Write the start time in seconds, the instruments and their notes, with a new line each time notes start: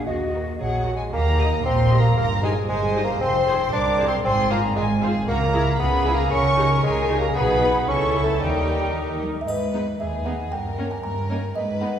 Already playing: french horn section A#3
0.07 double bass section D#2, french horn section F#4, cello section F#4, music box D#5, flute D#5
0.34 viola section F#4, violin section A#4 D#5
0.60 double bass section A#1, bassoon F#3, clarinet F#4, cello section G#4, flute F#5, violin section F#5
0.86 viola section F#4, cello section F#4, violin section A#4 D#5
0.95 bassoon G#3, clarinet G#4, flute G#5, violin section G#5
1.13 double bass section D#2, cello section D#2, bassoon A#3, violin section G4 A#5, clarinet A#4, flute A#5
1.39 french horn section D#4 G4, viola section G4 D#5, violin section A#4
1.65 double bass section A#1, cello section A#2, bassoon C4, clarinet C5, violin section C6, flute C6
1.91 french horn section D#4 G4, viola section G4 D#5
2.00 bassoon A#3, clarinet A#4, flute A#5, violin section A#5
2.17 double bass section G1, cello section G2, bassoon A#3, violin section A#4 A#5, clarinet A#4, flute A#5
2.42 bassoon G#3, french horn section D#4 G4, viola section G4 D#5, clarinet G#4, flute G#5, violin section G#5
2.68 double bass section G1, cello section G2, bassoon G#3, clarinet G#4, violin section C5 G#5, flute G#5
2.95 french horn section D#4 G4, viola section G4 D#5
3.04 bassoon A#3, clarinet A#4, violin section A#5, flute A#5
3.21 double bass section F1, cello section F2, bassoon C4, clarinet C5, flute C6, violin section C6
3.46 french horn section F4 G#4, viola section G#4 C5
3.72 double bass section C2, cello section C2, bassoon D4, violin section A#4 D6, clarinet D5, flute D6
3.98 french horn section F4 G#4, viola section G#4 C5
4.07 bassoon C4, clarinet C5, violin section C6, flute C6
4.24 double bass section G#1, cello section G#2, bassoon C4, violin section G#4 C6, clarinet C5, flute C6
4.50 bassoon A#3, viola section F4 C5, french horn section F4 G#4, clarinet A#4, violin section A#5, flute A#5
4.76 double bass section G#1, cello section G#2, bassoon G#3, violin section F4 G#5, clarinet G#4, flute G#5
5.02 viola section F4 C5, french horn section F4 G#4, violin section G#4
5.28 double bass section C#2, cello section C#3, bassoon A#3, violin section F#4 A#5, clarinet A#4, flute A#5
5.54 viola section E4 G#4, french horn section E4 G#4, violin section E4
5.79 double bass section C#2, cello section C#3, bassoon B3, violin section G#4 B5, clarinet B4, flute B5
6.05 french horn section E4 G#4, viola section E4 G#4
6.13 bassoon A#3, clarinet A#4, flute A#5, violin section A#5
6.31 double bass section C#2, cello section C#3, bassoon C#4, violin section A#4 C#6, clarinet C#5, flute C#6
6.57 french horn section D#4 G4, viola section D#4 G4, violin section A#4
6.83 double bass section C#2, cello section C#3, bassoon G#3, clarinet G#4, flute G#5, violin section G#5
7.10 viola section D#4 G4, french horn section D#4 G4
7.18 bassoon A#3, clarinet A#4, violin section A#5, flute A#5
7.35 double bass section B1, cello section B2, bassoon B3, viola section D#4 G#4, violin section G#4 B5, clarinet B4, flute B5
7.61 french horn section D#4 G#4, violin section B4
7.88 double bass section C#2, cello section C#3, bassoon C#4, viola section E4 A4, violin section A4 C#6, clarinet C#5, flute C#6
8.14 french horn section E4 A4
8.23 bassoon A3, clarinet A4, violin section A5, flute A5
8.41 double bass section D#2, cello section D#3, bassoon G3, viola section D#4 A#4, clarinet G4, violin section G4 G5, flute G5
8.67 french horn section D#4 A#4
8.95 cello section D#3
9.21 cello section G3, french horn section D#4 A#4
9.41 music box E5
9.48 cello section G#2, violin section B4, music box D#5, triangle
9.73 viola section G#3 B3, violin section D#4 B4
9.99 cello section D#2, violin section G#4, music box E5
10.25 viola section G#3 B3, violin section D#4 B4, music box F#5
10.52 cello section G2, violin section A#4, music box G5
10.77 viola section A#3 C#4, violin section D#4 A#4
10.91 music box G#5
11.02 cello section G2, violin section A#4, music box A#5
11.30 viola section A#3 C#4, violin section D#4 A#4
11.55 cello section G#2, violin section B4, music box D#5
11.81 viola section G#3 B3, violin section D#4 B4, music box F#5